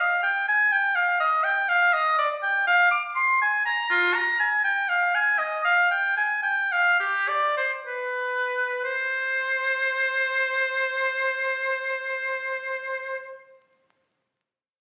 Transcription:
0.00 0.22 F5 medium
0.23 0.47 G5 medium
0.48 0.73 G#5 medium
0.72 0.97 G5 medium
0.95 1.20 F5 medium
1.20 1.45 D#5 medium
1.44 1.70 G5 medium
1.69 1.95 F5 medium
1.93 2.18 D#5 medium
2.18 2.29 D5 medium
2.43 2.66 G5 medium
2.67 2.91 F5 loud
2.91 3.03 D6 medium
3.16 3.40 C6 medium
3.41 3.65 G#5 medium
3.66 3.89 A#5 medium
3.90 4.16 F4 medium
4.14 4.39 A#5 medium
4.40 4.63 G#5 medium
4.64 4.90 G5 medium
4.89 5.16 F5 medium
5.15 5.40 G#5 medium
5.39 5.64 D#5 medium
5.65 5.90 F5 medium
5.91 6.16 G5 medium
6.17 6.42 G#5 medium
6.43 6.73 G5 medium
6.72 6.99 F5 medium
7.00 7.30 G4 medium
7.28 7.56 D5 medium
7.57 7.71 C5 medium
7.87 8.83 B4 medium
8.84 13.35 C5 medium

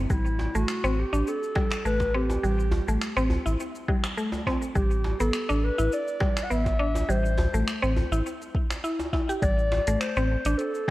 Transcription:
0.10 0.48 A1 medium
0.10 0.53 G3 medium
0.10 0.57 E4 medium
0.10 kick loud
0.10 cabasa medium
0.26 cabasa soft
0.39 djembe slap soft
0.39 djembe tone medium
0.55 0.65 A1 medium
0.55 0.82 A3 medium
0.55 1.00 F#4 medium
0.55 cabasa medium
0.68 finger snap medium
0.68 cabasa soft
0.84 1.04 A1 medium
0.84 0.92 C4 loud
0.84 cabasa soft
0.99 1.29 G4 medium
1.13 1.23 A1 medium
1.13 1.26 D4 medium
1.13 cabasa medium
1.27 1.85 A4 loud
1.27 cabasa soft
1.43 cabasa soft
1.55 1.84 G3 loud
1.55 kick loud
1.55 djembe slap medium
1.70 finger snap medium
1.70 djembe slap soft
1.70 cabasa medium
1.85 2.37 A1 medium
1.85 2.13 A3 medium
1.85 2.13 B4 medium
1.85 cabasa medium
2.00 kick medium
2.00 djembe slap soft
2.00 cabasa soft
2.14 2.42 C4 loud
2.14 3.27 G4 loud
2.29 djembe tone medium
2.29 cabasa medium
2.43 2.81 A1 medium
2.43 2.86 G3 medium
2.43 cabasa medium
2.59 cabasa soft
2.71 djembe slap soft
2.71 djembe tone medium
2.71 djembe bass medium
2.88 2.98 A1 loud
2.88 3.16 A3 medium
2.88 cabasa medium
3.01 finger snap medium
3.01 cabasa soft
3.16 3.37 A1 medium
3.16 3.25 C4 loud
3.16 cabasa soft
3.30 djembe bass medium
3.46 3.56 A1 medium
3.46 3.59 E4 medium
3.46 cabasa medium
3.60 cabasa medium
3.75 cabasa soft
3.88 4.16 G3 medium
3.88 kick loud
4.04 finger snap medium
4.04 djembe slap soft
4.04 cabasa medium
4.17 4.45 A3 medium
4.17 cabasa medium
4.32 djembe tone medium
4.32 cabasa soft
4.47 4.75 C4 loud
4.47 kick medium
4.47 djembe slap medium
4.47 djembe tone medium
4.62 cabasa medium
4.75 5.14 A1 loud
4.75 5.19 G3 medium
4.75 5.18 G4 medium
4.75 kick loud
4.75 cabasa medium
4.91 cabasa soft
5.05 djembe slap soft
5.05 djembe tone medium
5.20 5.30 A1 medium
5.20 5.48 B3 medium
5.20 5.66 A4 medium
5.20 cabasa medium
5.33 finger snap medium
5.33 cabasa medium
5.49 5.70 A1 medium
5.49 5.57 D4 loud
5.49 cabasa soft
5.64 5.93 B4 medium
5.78 5.89 A1 loud
5.78 5.92 E4 medium
5.78 cabasa medium
5.92 6.45 D5 loud
5.92 cabasa medium
6.08 cabasa soft
6.20 6.49 G3 loud
6.20 kick loud
6.20 djembe slap medium
6.37 finger snap medium
6.37 djembe slap soft
6.37 cabasa medium
6.44 6.53 F#5 medium
6.50 7.03 A1 medium
6.50 6.78 B3 medium
6.50 7.12 E5 loud
6.50 cabasa medium
6.66 kick medium
6.66 djembe slap soft
6.66 cabasa soft
6.79 7.07 D4 loud
6.95 djembe tone medium
6.95 cabasa medium
7.08 7.47 A1 medium
7.08 7.52 G3 medium
7.08 7.97 C5 loud
7.08 cabasa medium
7.25 cabasa soft
7.37 djembe slap soft
7.37 djembe tone medium
7.37 djembe bass medium
7.54 7.64 A1 loud
7.54 7.81 A3 medium
7.54 cabasa medium
7.68 finger snap medium
7.68 cabasa soft
7.82 8.03 A1 medium
7.82 7.90 C4 loud
7.82 cabasa soft
7.97 djembe bass medium
8.12 8.22 A1 medium
8.12 8.25 E4 medium
8.12 cabasa medium
8.26 cabasa medium
8.42 cabasa soft
8.55 kick loud
8.71 finger snap medium
8.71 djembe slap soft
8.71 cabasa medium
8.84 8.98 E4 medium
8.84 cabasa medium
9.00 djembe tone medium
9.00 cabasa soft
9.13 9.27 E4 medium
9.13 kick medium
9.13 djembe slap soft
9.13 djembe tone medium
9.29 9.42 G4 medium
9.29 cabasa medium
9.42 9.80 A1 medium
9.42 9.86 G3 medium
9.42 10.02 D5 loud
9.42 kick loud
9.42 closed hi-hat soft
9.42 cabasa medium
9.59 cabasa soft
9.72 djembe slap soft
9.72 djembe tone medium
9.87 9.97 A1 medium
9.87 10.15 A3 medium
9.87 closed hi-hat medium
9.87 cabasa medium
10.00 10.60 C5 medium
10.00 finger snap medium
10.00 closed hi-hat soft
10.00 cabasa soft
10.16 10.37 A1 medium
10.16 10.24 C4 loud
10.16 cabasa soft
10.45 10.55 A1 medium
10.45 10.58 D4 medium
10.45 closed hi-hat soft
10.45 cabasa medium
10.58 10.90 A4 loud
10.58 closed hi-hat soft
10.58 cabasa medium
10.75 cabasa soft

